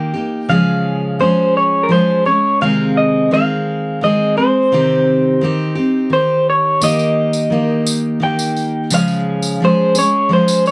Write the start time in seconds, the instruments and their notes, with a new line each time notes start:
Already playing: steel-string acoustic guitar D#3 A#3 D#4 G4, clean electric guitar G5
0.14 steel-string acoustic guitar A#3 D#4 G4
0.49 steel-string acoustic guitar C#3 F3 G#3 C#4 G#4, clean electric guitar F5
1.19 steel-string acoustic guitar F3 G#3 C#4 G#4, clean electric guitar C5
1.57 clean electric guitar C#5
1.83 clean electric guitar A#4
1.89 steel-string acoustic guitar F3 G#3 C#4 G#4, clean electric guitar C5
2.25 steel-string acoustic guitar G#3 C#4 G#4, clean electric guitar C#5
2.61 steel-string acoustic guitar C3 D#3 G#3 C4 G#4, clean electric guitar F5
2.97 clean electric guitar D#5
3.31 steel-string acoustic guitar D#3 G#3 C4 G#4, clean electric guitar F5
4.01 steel-string acoustic guitar D#3 G#3 C4 G#4, clean electric guitar D#5
4.37 steel-string acoustic guitar G#3 C4 G#4, clean electric guitar C5
4.72 steel-string acoustic guitar C3 D#3 C4 D#4 G4
5.41 steel-string acoustic guitar D#3 C4 D#4 G4
5.75 steel-string acoustic guitar C4 D#4 G4
6.10 steel-string acoustic guitar D#3 D#4 G4, clean electric guitar C5
6.50 clean electric guitar C#5
6.81 steel-string acoustic guitar D#3 A#3 D#4 G4, clean electric guitar D#5, tambourine
6.99 tambourine
7.33 tambourine
7.50 steel-string acoustic guitar D#3 A#3 D#4 G4
7.87 tambourine
8.20 steel-string acoustic guitar D#3 A#3 D#4 G4, clean electric guitar G5
8.39 tambourine
8.56 tambourine
8.90 steel-string acoustic guitar C#3 F3 G#3 C#4 G#4, clean electric guitar F5, tambourine
9.08 tambourine
9.42 tambourine
9.60 steel-string acoustic guitar F3 G#3 C#4 G#4
9.65 clean electric guitar C5
9.95 steel-string acoustic guitar G#3 C#4 G#4, clean electric guitar C#5, tambourine
10.29 steel-string acoustic guitar F3 G#3 C#4 G#4
10.33 clean electric guitar C5
10.48 tambourine
10.66 clean electric guitar C#5, tambourine